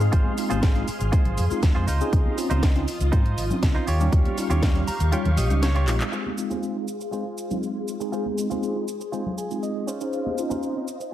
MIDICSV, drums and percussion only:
0, 0, Header, 1, 2, 480
1, 0, Start_track
1, 0, Key_signature, -4, "major"
1, 0, Tempo, 500000
1, 123, Time_signature, 4, 2, 24, 8
1, 10689, End_track
2, 0, Start_track
2, 0, Title_t, "Drums"
2, 6, Note_on_c, 9, 82, 42
2, 7, Note_off_c, 9, 82, 0
2, 7, Note_on_c, 9, 82, 37
2, 103, Note_off_c, 9, 82, 0
2, 121, Note_on_c, 9, 42, 80
2, 122, Note_on_c, 9, 36, 112
2, 122, Note_on_c, 9, 82, 32
2, 217, Note_off_c, 9, 42, 0
2, 218, Note_off_c, 9, 36, 0
2, 218, Note_off_c, 9, 82, 0
2, 246, Note_on_c, 9, 63, 83
2, 249, Note_on_c, 9, 82, 26
2, 342, Note_off_c, 9, 63, 0
2, 345, Note_off_c, 9, 82, 0
2, 357, Note_on_c, 9, 82, 86
2, 361, Note_on_c, 9, 46, 100
2, 362, Note_off_c, 9, 82, 0
2, 362, Note_on_c, 9, 82, 80
2, 457, Note_off_c, 9, 46, 0
2, 458, Note_off_c, 9, 82, 0
2, 485, Note_on_c, 9, 42, 54
2, 486, Note_on_c, 9, 82, 47
2, 494, Note_off_c, 9, 82, 0
2, 494, Note_on_c, 9, 63, 90
2, 494, Note_on_c, 9, 82, 37
2, 581, Note_off_c, 9, 42, 0
2, 590, Note_off_c, 9, 63, 0
2, 590, Note_off_c, 9, 82, 0
2, 602, Note_on_c, 9, 42, 81
2, 602, Note_on_c, 9, 82, 35
2, 603, Note_on_c, 9, 36, 114
2, 603, Note_on_c, 9, 38, 112
2, 698, Note_off_c, 9, 42, 0
2, 698, Note_off_c, 9, 82, 0
2, 699, Note_off_c, 9, 36, 0
2, 699, Note_off_c, 9, 38, 0
2, 725, Note_on_c, 9, 42, 36
2, 733, Note_on_c, 9, 82, 25
2, 821, Note_off_c, 9, 42, 0
2, 829, Note_off_c, 9, 82, 0
2, 841, Note_on_c, 9, 46, 103
2, 842, Note_on_c, 9, 82, 78
2, 844, Note_off_c, 9, 82, 0
2, 844, Note_on_c, 9, 82, 89
2, 937, Note_off_c, 9, 46, 0
2, 940, Note_off_c, 9, 82, 0
2, 965, Note_on_c, 9, 42, 50
2, 966, Note_on_c, 9, 82, 44
2, 971, Note_off_c, 9, 82, 0
2, 971, Note_on_c, 9, 82, 41
2, 1061, Note_off_c, 9, 42, 0
2, 1067, Note_off_c, 9, 82, 0
2, 1082, Note_on_c, 9, 42, 78
2, 1082, Note_on_c, 9, 82, 34
2, 1083, Note_on_c, 9, 36, 111
2, 1178, Note_off_c, 9, 42, 0
2, 1178, Note_off_c, 9, 82, 0
2, 1179, Note_off_c, 9, 36, 0
2, 1204, Note_on_c, 9, 42, 36
2, 1204, Note_on_c, 9, 64, 81
2, 1205, Note_on_c, 9, 82, 24
2, 1300, Note_off_c, 9, 42, 0
2, 1300, Note_off_c, 9, 64, 0
2, 1301, Note_off_c, 9, 82, 0
2, 1321, Note_on_c, 9, 46, 95
2, 1321, Note_on_c, 9, 82, 77
2, 1328, Note_off_c, 9, 82, 0
2, 1328, Note_on_c, 9, 82, 81
2, 1417, Note_off_c, 9, 46, 0
2, 1424, Note_off_c, 9, 82, 0
2, 1446, Note_on_c, 9, 82, 45
2, 1452, Note_off_c, 9, 82, 0
2, 1452, Note_on_c, 9, 82, 38
2, 1548, Note_off_c, 9, 82, 0
2, 1562, Note_on_c, 9, 42, 76
2, 1562, Note_on_c, 9, 82, 36
2, 1563, Note_on_c, 9, 36, 110
2, 1563, Note_on_c, 9, 38, 111
2, 1658, Note_off_c, 9, 42, 0
2, 1658, Note_off_c, 9, 82, 0
2, 1659, Note_off_c, 9, 36, 0
2, 1659, Note_off_c, 9, 38, 0
2, 1799, Note_on_c, 9, 82, 92
2, 1802, Note_on_c, 9, 46, 96
2, 1803, Note_off_c, 9, 82, 0
2, 1803, Note_on_c, 9, 82, 79
2, 1898, Note_off_c, 9, 46, 0
2, 1899, Note_off_c, 9, 82, 0
2, 1926, Note_on_c, 9, 82, 35
2, 1927, Note_off_c, 9, 82, 0
2, 1927, Note_on_c, 9, 82, 47
2, 2023, Note_off_c, 9, 82, 0
2, 2043, Note_on_c, 9, 36, 117
2, 2043, Note_on_c, 9, 42, 80
2, 2043, Note_on_c, 9, 82, 53
2, 2044, Note_off_c, 9, 82, 0
2, 2044, Note_on_c, 9, 82, 35
2, 2139, Note_off_c, 9, 36, 0
2, 2139, Note_off_c, 9, 42, 0
2, 2140, Note_off_c, 9, 82, 0
2, 2164, Note_on_c, 9, 63, 83
2, 2169, Note_on_c, 9, 82, 29
2, 2260, Note_off_c, 9, 63, 0
2, 2265, Note_off_c, 9, 82, 0
2, 2283, Note_on_c, 9, 46, 100
2, 2284, Note_on_c, 9, 82, 84
2, 2288, Note_off_c, 9, 82, 0
2, 2288, Note_on_c, 9, 82, 87
2, 2379, Note_off_c, 9, 46, 0
2, 2384, Note_off_c, 9, 82, 0
2, 2406, Note_on_c, 9, 42, 56
2, 2407, Note_on_c, 9, 82, 48
2, 2409, Note_on_c, 9, 63, 86
2, 2417, Note_off_c, 9, 82, 0
2, 2417, Note_on_c, 9, 82, 38
2, 2502, Note_off_c, 9, 42, 0
2, 2505, Note_off_c, 9, 63, 0
2, 2513, Note_off_c, 9, 82, 0
2, 2522, Note_on_c, 9, 36, 108
2, 2523, Note_on_c, 9, 42, 81
2, 2524, Note_on_c, 9, 82, 35
2, 2525, Note_on_c, 9, 38, 117
2, 2618, Note_off_c, 9, 36, 0
2, 2619, Note_off_c, 9, 42, 0
2, 2620, Note_off_c, 9, 82, 0
2, 2621, Note_off_c, 9, 38, 0
2, 2646, Note_on_c, 9, 42, 36
2, 2659, Note_on_c, 9, 82, 29
2, 2742, Note_off_c, 9, 42, 0
2, 2755, Note_off_c, 9, 82, 0
2, 2762, Note_on_c, 9, 46, 100
2, 2763, Note_on_c, 9, 82, 78
2, 2765, Note_off_c, 9, 82, 0
2, 2765, Note_on_c, 9, 82, 95
2, 2858, Note_off_c, 9, 46, 0
2, 2861, Note_off_c, 9, 82, 0
2, 2885, Note_on_c, 9, 42, 50
2, 2885, Note_on_c, 9, 82, 41
2, 2886, Note_off_c, 9, 82, 0
2, 2886, Note_on_c, 9, 82, 47
2, 2981, Note_off_c, 9, 42, 0
2, 2982, Note_off_c, 9, 82, 0
2, 3001, Note_on_c, 9, 36, 111
2, 3001, Note_on_c, 9, 42, 78
2, 3002, Note_on_c, 9, 82, 35
2, 3097, Note_off_c, 9, 36, 0
2, 3097, Note_off_c, 9, 42, 0
2, 3098, Note_off_c, 9, 82, 0
2, 3126, Note_on_c, 9, 42, 36
2, 3127, Note_on_c, 9, 82, 24
2, 3222, Note_off_c, 9, 42, 0
2, 3223, Note_off_c, 9, 82, 0
2, 3243, Note_on_c, 9, 46, 101
2, 3243, Note_on_c, 9, 82, 80
2, 3248, Note_off_c, 9, 82, 0
2, 3248, Note_on_c, 9, 82, 84
2, 3339, Note_off_c, 9, 46, 0
2, 3344, Note_off_c, 9, 82, 0
2, 3362, Note_on_c, 9, 82, 42
2, 3363, Note_on_c, 9, 64, 88
2, 3365, Note_off_c, 9, 82, 0
2, 3365, Note_on_c, 9, 82, 46
2, 3459, Note_off_c, 9, 64, 0
2, 3461, Note_off_c, 9, 82, 0
2, 3481, Note_on_c, 9, 36, 107
2, 3481, Note_on_c, 9, 42, 85
2, 3482, Note_on_c, 9, 82, 35
2, 3483, Note_on_c, 9, 38, 115
2, 3577, Note_off_c, 9, 36, 0
2, 3577, Note_off_c, 9, 42, 0
2, 3578, Note_off_c, 9, 82, 0
2, 3579, Note_off_c, 9, 38, 0
2, 3607, Note_on_c, 9, 82, 29
2, 3703, Note_off_c, 9, 82, 0
2, 3720, Note_on_c, 9, 46, 96
2, 3721, Note_on_c, 9, 82, 78
2, 3725, Note_off_c, 9, 82, 0
2, 3725, Note_on_c, 9, 82, 90
2, 3816, Note_off_c, 9, 46, 0
2, 3821, Note_off_c, 9, 82, 0
2, 3844, Note_on_c, 9, 82, 47
2, 3850, Note_off_c, 9, 82, 0
2, 3850, Note_on_c, 9, 82, 36
2, 3946, Note_off_c, 9, 82, 0
2, 3956, Note_on_c, 9, 82, 52
2, 3960, Note_on_c, 9, 36, 118
2, 3961, Note_on_c, 9, 42, 82
2, 3962, Note_off_c, 9, 82, 0
2, 3962, Note_on_c, 9, 82, 34
2, 4056, Note_off_c, 9, 36, 0
2, 4057, Note_off_c, 9, 42, 0
2, 4058, Note_off_c, 9, 82, 0
2, 4083, Note_on_c, 9, 82, 28
2, 4084, Note_on_c, 9, 42, 37
2, 4090, Note_on_c, 9, 63, 76
2, 4179, Note_off_c, 9, 82, 0
2, 4180, Note_off_c, 9, 42, 0
2, 4186, Note_off_c, 9, 63, 0
2, 4201, Note_on_c, 9, 46, 103
2, 4202, Note_on_c, 9, 82, 80
2, 4203, Note_off_c, 9, 82, 0
2, 4203, Note_on_c, 9, 82, 104
2, 4297, Note_off_c, 9, 46, 0
2, 4299, Note_off_c, 9, 82, 0
2, 4318, Note_on_c, 9, 63, 76
2, 4322, Note_on_c, 9, 82, 40
2, 4325, Note_on_c, 9, 42, 57
2, 4326, Note_off_c, 9, 82, 0
2, 4326, Note_on_c, 9, 82, 50
2, 4414, Note_off_c, 9, 63, 0
2, 4421, Note_off_c, 9, 42, 0
2, 4422, Note_off_c, 9, 82, 0
2, 4434, Note_on_c, 9, 82, 48
2, 4440, Note_on_c, 9, 36, 110
2, 4441, Note_on_c, 9, 42, 89
2, 4442, Note_off_c, 9, 82, 0
2, 4442, Note_on_c, 9, 82, 35
2, 4443, Note_on_c, 9, 38, 123
2, 4536, Note_off_c, 9, 36, 0
2, 4537, Note_off_c, 9, 42, 0
2, 4538, Note_off_c, 9, 82, 0
2, 4539, Note_off_c, 9, 38, 0
2, 4564, Note_on_c, 9, 42, 38
2, 4566, Note_on_c, 9, 82, 30
2, 4660, Note_off_c, 9, 42, 0
2, 4662, Note_off_c, 9, 82, 0
2, 4680, Note_on_c, 9, 46, 98
2, 4681, Note_on_c, 9, 82, 83
2, 4685, Note_off_c, 9, 82, 0
2, 4685, Note_on_c, 9, 82, 92
2, 4776, Note_off_c, 9, 46, 0
2, 4781, Note_off_c, 9, 82, 0
2, 4803, Note_on_c, 9, 42, 54
2, 4804, Note_on_c, 9, 82, 40
2, 4899, Note_off_c, 9, 42, 0
2, 4900, Note_off_c, 9, 82, 0
2, 4919, Note_on_c, 9, 42, 86
2, 4920, Note_on_c, 9, 82, 34
2, 4923, Note_off_c, 9, 82, 0
2, 4923, Note_on_c, 9, 82, 54
2, 5015, Note_off_c, 9, 42, 0
2, 5019, Note_off_c, 9, 82, 0
2, 5038, Note_on_c, 9, 82, 23
2, 5044, Note_on_c, 9, 42, 35
2, 5047, Note_on_c, 9, 64, 82
2, 5134, Note_off_c, 9, 82, 0
2, 5140, Note_off_c, 9, 42, 0
2, 5143, Note_off_c, 9, 64, 0
2, 5160, Note_on_c, 9, 46, 101
2, 5160, Note_on_c, 9, 82, 79
2, 5165, Note_off_c, 9, 82, 0
2, 5165, Note_on_c, 9, 82, 91
2, 5256, Note_off_c, 9, 46, 0
2, 5261, Note_off_c, 9, 82, 0
2, 5284, Note_on_c, 9, 42, 38
2, 5285, Note_on_c, 9, 82, 43
2, 5291, Note_off_c, 9, 82, 0
2, 5291, Note_on_c, 9, 82, 39
2, 5380, Note_off_c, 9, 42, 0
2, 5387, Note_off_c, 9, 82, 0
2, 5401, Note_on_c, 9, 42, 81
2, 5402, Note_on_c, 9, 38, 117
2, 5402, Note_on_c, 9, 82, 34
2, 5407, Note_off_c, 9, 82, 0
2, 5407, Note_on_c, 9, 82, 59
2, 5497, Note_off_c, 9, 42, 0
2, 5498, Note_off_c, 9, 38, 0
2, 5503, Note_off_c, 9, 82, 0
2, 5526, Note_on_c, 9, 42, 39
2, 5622, Note_off_c, 9, 42, 0
2, 5642, Note_on_c, 9, 39, 83
2, 5642, Note_on_c, 9, 46, 103
2, 5642, Note_on_c, 9, 82, 79
2, 5738, Note_off_c, 9, 39, 0
2, 5738, Note_off_c, 9, 46, 0
2, 5738, Note_off_c, 9, 82, 0
2, 5765, Note_on_c, 9, 39, 94
2, 5765, Note_on_c, 9, 42, 37
2, 5766, Note_on_c, 9, 82, 42
2, 5861, Note_off_c, 9, 39, 0
2, 5861, Note_off_c, 9, 42, 0
2, 5862, Note_off_c, 9, 82, 0
2, 5882, Note_on_c, 9, 82, 31
2, 5978, Note_off_c, 9, 82, 0
2, 6004, Note_on_c, 9, 82, 25
2, 6011, Note_on_c, 9, 63, 80
2, 6100, Note_off_c, 9, 82, 0
2, 6107, Note_off_c, 9, 63, 0
2, 6123, Note_on_c, 9, 82, 72
2, 6130, Note_off_c, 9, 82, 0
2, 6130, Note_on_c, 9, 82, 97
2, 6226, Note_off_c, 9, 82, 0
2, 6245, Note_on_c, 9, 82, 34
2, 6247, Note_off_c, 9, 82, 0
2, 6247, Note_on_c, 9, 82, 42
2, 6249, Note_on_c, 9, 63, 86
2, 6343, Note_off_c, 9, 82, 0
2, 6345, Note_off_c, 9, 63, 0
2, 6363, Note_on_c, 9, 82, 31
2, 6365, Note_off_c, 9, 82, 0
2, 6365, Note_on_c, 9, 82, 47
2, 6461, Note_off_c, 9, 82, 0
2, 6602, Note_on_c, 9, 82, 67
2, 6610, Note_off_c, 9, 82, 0
2, 6610, Note_on_c, 9, 82, 80
2, 6706, Note_off_c, 9, 82, 0
2, 6722, Note_on_c, 9, 82, 36
2, 6727, Note_off_c, 9, 82, 0
2, 6727, Note_on_c, 9, 82, 38
2, 6823, Note_off_c, 9, 82, 0
2, 6842, Note_on_c, 9, 82, 30
2, 6938, Note_off_c, 9, 82, 0
2, 7082, Note_on_c, 9, 82, 71
2, 7178, Note_off_c, 9, 82, 0
2, 7203, Note_on_c, 9, 82, 34
2, 7207, Note_off_c, 9, 82, 0
2, 7207, Note_on_c, 9, 82, 40
2, 7210, Note_on_c, 9, 64, 90
2, 7303, Note_off_c, 9, 82, 0
2, 7306, Note_off_c, 9, 64, 0
2, 7318, Note_on_c, 9, 82, 51
2, 7325, Note_off_c, 9, 82, 0
2, 7325, Note_on_c, 9, 82, 31
2, 7421, Note_off_c, 9, 82, 0
2, 7561, Note_on_c, 9, 82, 92
2, 7563, Note_off_c, 9, 82, 0
2, 7563, Note_on_c, 9, 82, 68
2, 7659, Note_off_c, 9, 82, 0
2, 7686, Note_on_c, 9, 82, 38
2, 7782, Note_off_c, 9, 82, 0
2, 7804, Note_on_c, 9, 82, 28
2, 7900, Note_off_c, 9, 82, 0
2, 7927, Note_on_c, 9, 82, 25
2, 7928, Note_on_c, 9, 63, 72
2, 8023, Note_off_c, 9, 82, 0
2, 8024, Note_off_c, 9, 63, 0
2, 8044, Note_on_c, 9, 82, 72
2, 8045, Note_off_c, 9, 82, 0
2, 8045, Note_on_c, 9, 82, 90
2, 8141, Note_off_c, 9, 82, 0
2, 8167, Note_on_c, 9, 82, 41
2, 8171, Note_off_c, 9, 82, 0
2, 8171, Note_on_c, 9, 82, 36
2, 8172, Note_on_c, 9, 63, 76
2, 8267, Note_off_c, 9, 82, 0
2, 8268, Note_off_c, 9, 63, 0
2, 8281, Note_on_c, 9, 82, 47
2, 8285, Note_off_c, 9, 82, 0
2, 8285, Note_on_c, 9, 82, 29
2, 8381, Note_off_c, 9, 82, 0
2, 8400, Note_on_c, 9, 82, 22
2, 8496, Note_off_c, 9, 82, 0
2, 8524, Note_on_c, 9, 82, 71
2, 8525, Note_off_c, 9, 82, 0
2, 8525, Note_on_c, 9, 82, 83
2, 8621, Note_off_c, 9, 82, 0
2, 8642, Note_on_c, 9, 82, 41
2, 8647, Note_off_c, 9, 82, 0
2, 8647, Note_on_c, 9, 82, 36
2, 8743, Note_off_c, 9, 82, 0
2, 8764, Note_on_c, 9, 82, 28
2, 8860, Note_off_c, 9, 82, 0
2, 8878, Note_on_c, 9, 82, 24
2, 8891, Note_on_c, 9, 64, 80
2, 8974, Note_off_c, 9, 82, 0
2, 8987, Note_off_c, 9, 64, 0
2, 9003, Note_on_c, 9, 82, 77
2, 9004, Note_off_c, 9, 82, 0
2, 9004, Note_on_c, 9, 82, 65
2, 9100, Note_off_c, 9, 82, 0
2, 9119, Note_on_c, 9, 82, 36
2, 9127, Note_off_c, 9, 82, 0
2, 9127, Note_on_c, 9, 82, 39
2, 9223, Note_off_c, 9, 82, 0
2, 9240, Note_on_c, 9, 82, 53
2, 9245, Note_off_c, 9, 82, 0
2, 9245, Note_on_c, 9, 82, 28
2, 9341, Note_off_c, 9, 82, 0
2, 9369, Note_on_c, 9, 82, 25
2, 9465, Note_off_c, 9, 82, 0
2, 9484, Note_on_c, 9, 82, 67
2, 9580, Note_off_c, 9, 82, 0
2, 9607, Note_on_c, 9, 82, 39
2, 9703, Note_off_c, 9, 82, 0
2, 9724, Note_on_c, 9, 82, 29
2, 9820, Note_off_c, 9, 82, 0
2, 9843, Note_on_c, 9, 82, 22
2, 9853, Note_on_c, 9, 63, 87
2, 9939, Note_off_c, 9, 82, 0
2, 9949, Note_off_c, 9, 63, 0
2, 9958, Note_on_c, 9, 82, 83
2, 9964, Note_off_c, 9, 82, 0
2, 9964, Note_on_c, 9, 82, 71
2, 10060, Note_off_c, 9, 82, 0
2, 10087, Note_on_c, 9, 82, 41
2, 10090, Note_on_c, 9, 63, 85
2, 10093, Note_off_c, 9, 82, 0
2, 10093, Note_on_c, 9, 82, 34
2, 10186, Note_off_c, 9, 63, 0
2, 10189, Note_off_c, 9, 82, 0
2, 10202, Note_on_c, 9, 82, 31
2, 10208, Note_off_c, 9, 82, 0
2, 10208, Note_on_c, 9, 82, 49
2, 10304, Note_off_c, 9, 82, 0
2, 10329, Note_on_c, 9, 82, 24
2, 10425, Note_off_c, 9, 82, 0
2, 10439, Note_on_c, 9, 82, 83
2, 10442, Note_off_c, 9, 82, 0
2, 10442, Note_on_c, 9, 82, 70
2, 10538, Note_off_c, 9, 82, 0
2, 10565, Note_on_c, 9, 82, 37
2, 10566, Note_off_c, 9, 82, 0
2, 10566, Note_on_c, 9, 82, 33
2, 10662, Note_off_c, 9, 82, 0
2, 10689, End_track
0, 0, End_of_file